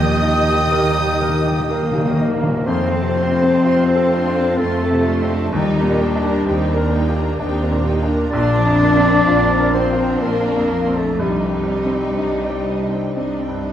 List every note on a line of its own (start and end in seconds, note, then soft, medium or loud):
0.00 2.47 D#2 medium
0.00 2.63 D#2 medium
0.00 0.38 A#2 soft
0.00 1.70 D#3 medium
0.00 2.71 D#3 medium
0.00 1.67 A#3 medium
0.00 2.18 A#3 soft
0.00 1.69 D#4 medium
0.00 1.67 G4 medium
0.00 2.19 G4 medium
0.00 2.15 D#5 medium
0.00 2.35 G5 medium
0.00 2.14 D#6 medium
0.00 2.20 D#6 medium
0.13 0.19 D#3 soft
0.20 0.28 D#3 soft
0.20 0.62 D#4 soft
0.20 1.94 D#4 soft
0.29 0.36 D#3 soft
0.37 0.43 D#3 soft
0.44 0.51 D#3 soft
0.44 2.71 G4 soft
0.44 0.87 G4 soft
0.52 0.59 D#3 soft
0.61 0.66 D#3 soft
0.67 0.73 D#3 soft
0.72 0.82 D#3 soft
0.72 1.11 A#4 soft
0.72 1.21 A#4 soft
0.83 0.89 D#3 soft
0.91 0.97 D#3 soft
0.96 1.04 D#3 medium
0.96 1.36 G4 soft
0.96 1.44 D#5 soft
1.06 1.12 D#3 medium
1.14 1.20 D#3 medium
1.21 1.27 D#3 medium
1.21 1.60 A#4 soft
1.21 1.69 A#4 soft
1.28 1.36 D#3 soft
1.37 1.43 D#3 medium
1.45 1.50 D#3 medium
1.45 1.85 G4 soft
1.45 2.71 D#5 soft
1.52 1.58 D#3 medium
1.60 1.66 D#3 medium
1.67 1.74 D#3 medium
1.67 2.63 A#3 medium
1.67 2.68 A#4 medium
1.67 2.71 A#4 soft
1.67 2.10 A#4 soft
1.73 1.81 D#3 medium
1.73 2.65 A#3 medium
1.83 1.90 D#3 medium
1.91 1.97 D#3 medium
1.91 2.42 D#4 soft
1.91 2.34 G4 soft
1.98 2.04 D#3 medium
2.05 2.12 D#3 medium
2.14 2.20 D#3 medium
2.19 2.27 D#3 medium
2.19 2.71 A#3 soft
2.19 2.58 D#4 soft
2.28 2.35 D#3 medium
2.36 2.42 D#3 medium
2.43 2.67 A#2 soft
2.43 2.50 D#3 medium
2.43 2.71 D#4 soft
2.51 2.58 D#3 medium
2.59 2.66 D#3 medium
2.66 5.49 F2 medium
2.66 3.52 F2 medium
2.66 5.57 F3 medium
2.66 2.89 A3 medium
2.66 4.59 C4 medium
2.66 4.60 C4 medium
2.66 2.89 F4 medium
2.66 4.58 C5 medium
2.66 2.90 C6 soft
2.91 5.06 C4 soft
2.91 3.15 C4 soft
2.91 3.16 A4 soft
2.91 3.17 A5 soft
3.00 3.51 C3 soft
3.15 3.39 A3 soft
3.15 4.82 F4 soft
3.15 3.39 F4 medium
3.15 3.40 C6 soft
3.32 3.83 C4 soft
3.39 3.64 C4 soft
3.39 5.56 A4 soft
3.39 3.63 A4 soft
3.39 3.65 A5 soft
3.62 4.48 F2 medium
3.62 3.85 A3 soft
3.62 4.08 C4 medium
3.62 3.85 F4 soft
3.62 4.15 F4 soft
3.62 4.10 C5 soft
3.62 3.87 C6 medium
3.86 4.11 C4 soft
3.86 4.11 A4 soft
3.86 4.34 F5 soft
3.92 4.13 A5 soft
3.96 4.46 A4 soft
4.10 4.35 A3 soft
4.10 4.58 D4 medium
4.10 4.35 F4 soft
4.16 4.37 C6 medium
4.27 4.77 F4 soft
4.35 4.59 C4 soft
4.35 4.59 A4 soft
4.35 5.57 F5 medium
4.35 4.61 A5 soft
4.57 5.42 F2 medium
4.57 5.53 A3 medium
4.57 4.81 A3 soft
4.57 5.53 A3 medium
4.57 5.09 C4 soft
4.57 5.06 C4 medium
4.57 4.81 F4 soft
4.57 5.34 A4 medium
4.57 5.57 C5 medium
4.61 4.82 C6 medium
4.83 5.06 C4 soft
4.83 5.28 F4 soft
4.83 5.06 A4 soft
4.83 5.07 A5 soft
4.90 5.40 C3 soft
5.06 5.29 A3 soft
5.06 5.57 C4 soft
5.06 5.53 D4 medium
5.06 5.29 F4 soft
5.06 5.30 C6 soft
5.22 5.53 C4 medium
5.30 5.53 C4 medium
5.30 5.57 F4 soft
5.30 5.53 A4 medium
5.30 5.54 A5 soft
5.51 8.29 D#2 medium
5.51 6.36 D#2 medium
5.51 8.38 D#3 medium
5.51 6.93 G3 medium
5.51 6.94 G3 medium
5.51 5.75 D#4 medium
5.51 5.99 D#4 medium
5.51 6.89 G4 medium
5.51 5.75 G4 medium
5.51 5.75 G5 medium
5.76 7.86 A#3 soft
5.76 6.01 D4 soft
5.76 6.01 A#4 soft
5.76 6.00 A#5 medium
5.83 6.33 A#2 soft
5.99 6.47 D4 medium
5.99 6.24 D#4 medium
5.99 6.24 G4 medium
5.99 6.23 G5 medium
6.16 6.65 D4 medium
6.23 6.47 D4 medium
6.23 8.37 G4 soft
6.23 6.47 A#4 soft
6.23 6.46 A#5 medium
6.46 7.29 D#2 medium
6.46 6.93 C4 medium
6.46 6.69 D#4 medium
6.46 6.96 G4 soft
6.46 6.69 G4 medium
6.46 6.92 A#4 medium
6.46 6.68 G5 soft
6.70 6.94 D4 medium
6.70 6.94 A#4 medium
6.70 7.16 D5 medium
6.70 6.93 A#5 medium
6.77 7.27 A#4 soft
6.93 7.41 A#3 medium
6.93 7.17 D#4 medium
6.93 7.17 G4 medium
6.93 7.39 A#4 medium
6.93 7.17 G5 medium
7.09 7.59 G4 soft
7.16 7.40 D4 soft
7.16 7.40 A#4 soft
7.16 11.07 D5 medium
7.16 7.40 A#5 medium
7.39 8.23 D#2 medium
7.39 7.87 C4 medium
7.39 7.90 D4 soft
7.39 7.61 D#4 medium
7.39 7.61 G4 medium
7.39 9.27 A#4 medium
7.39 7.61 G5 medium
7.62 7.87 D4 medium
7.62 7.86 A#4 medium
7.62 7.86 A#5 soft
7.71 8.21 A#2 soft
7.86 8.33 A#3 medium
7.86 11.24 A#3 soft
7.86 8.10 D#4 medium
7.86 8.10 G4 medium
7.86 8.10 G5 medium
8.03 8.34 D4 medium
8.09 8.33 D4 soft
8.09 8.33 A#4 medium
8.09 8.33 A#5 soft
8.31 11.15 A#1 medium
8.31 9.17 A#1 medium
8.31 11.24 A#2 medium
8.31 8.55 A#3 medium
8.31 9.71 D4 medium
8.31 8.80 D4 medium
8.31 8.55 F4 medium
8.31 9.70 D5 loud
8.31 8.55 C6 medium
8.36 9.72 D4 medium
8.55 10.70 F3 soft
8.55 8.80 C4 medium
8.55 8.80 D4 medium
8.55 8.79 A#5 soft
8.65 9.15 F2 soft
8.79 9.04 A#3 medium
8.79 9.27 A#3 medium
8.79 10.47 C4 soft
8.79 9.04 F4 medium
8.79 9.03 C6 medium
8.97 9.47 C4 soft
9.03 9.28 C4 soft
9.03 9.28 D4 soft
9.03 11.24 F4 medium
9.03 9.27 A#5 soft
9.25 10.11 A#1 medium
9.25 9.50 A#3 medium
9.25 9.74 C4 medium
9.25 9.78 F4 soft
9.25 9.50 F4 medium
9.25 9.74 A#4 soft
9.25 9.48 C6 soft
9.50 9.76 C4 soft
9.50 9.75 D4 soft
9.50 9.99 C5 soft
9.50 9.74 A#5 soft
9.60 10.10 A#4 soft
9.72 9.99 A#3 soft
9.72 10.23 C4 medium
9.72 11.19 D4 medium
9.72 9.99 F4 soft
9.72 10.22 A#4 soft
9.72 10.24 C5 medium
9.72 9.97 C6 soft
9.92 10.43 F4 soft
9.97 10.23 C4 soft
9.97 10.23 D4 soft
9.97 12.41 C5 soft
9.97 10.22 A#5 soft
10.22 11.08 A#1 medium
10.22 10.95 A#3 medium
10.22 10.46 A#3 soft
10.22 10.96 A#3 medium
10.22 10.74 C4 soft
10.22 10.46 F4 soft
10.22 10.98 A#4 medium
10.22 11.24 A#4 soft
10.22 10.45 C6 soft
10.47 10.95 C4 soft
10.47 10.72 C4 soft
10.47 10.71 D4 soft
10.47 10.71 A#5 soft
10.56 11.07 F2 soft
10.71 11.24 F3 soft
10.71 10.96 A#3 soft
10.71 10.96 F4 soft
10.71 10.95 C6 soft
10.88 11.20 C4 soft
10.95 11.20 A3 medium
10.95 11.21 A3 soft
10.95 11.20 C4 soft
10.95 11.69 C4 soft
10.95 11.18 D4 soft
10.95 11.22 A4 medium
10.95 11.20 A#5 soft
11.19 13.73 C2 soft
11.19 12.06 C2 medium
11.19 13.73 C3 medium
11.19 13.64 G3 medium
11.19 13.61 G3 medium
11.19 11.42 D4 soft
11.19 13.59 D#4 medium
11.19 11.43 D#4 soft
11.19 13.64 G4 medium
11.19 11.43 D#5 soft
11.44 13.61 G3 soft
11.44 11.68 C4 soft
11.44 11.68 D4 soft
11.44 11.70 G5 soft
11.53 12.05 G2 soft
11.70 13.37 C4 soft
11.70 11.92 D4 soft
11.70 11.93 D#4 soft
11.70 11.94 D#5 soft
11.85 12.37 C4 soft
11.93 12.17 C4 soft
11.93 12.16 D4 soft
11.93 13.73 D#4 soft
11.93 12.18 G5 soft
12.17 13.03 C2 medium
12.17 12.40 D4 soft
12.17 12.40 D#4 soft
12.17 12.70 D#4 soft
12.17 12.65 D5 soft
12.17 12.41 D#5 soft
12.42 12.66 C4 soft
12.42 12.65 D4 soft
12.42 12.90 C5 soft
12.42 12.67 G5 soft
12.50 13.02 D5 soft
12.66 12.90 D4 soft
12.66 12.91 D#4 soft
12.66 13.14 D5 soft
12.66 12.91 D#5 soft
12.83 13.34 D#4 soft
12.90 13.15 C4 soft
12.90 13.14 D4 soft
12.90 13.73 C5 soft
12.90 13.15 G5 soft
13.15 13.73 C2 soft
13.15 13.67 C4 soft
13.15 13.37 D4 soft
13.15 13.38 D#4 soft
13.15 13.73 D5 soft
13.15 13.39 D#5 soft
13.38 13.73 C4 soft
13.38 13.64 C4 soft
13.38 13.63 D4 soft
13.38 13.64 G5 soft
13.48 13.73 G2 soft
13.62 13.73 G3 soft
13.62 13.73 D4 soft
13.62 13.73 D#4 soft
13.62 13.73 D#5 soft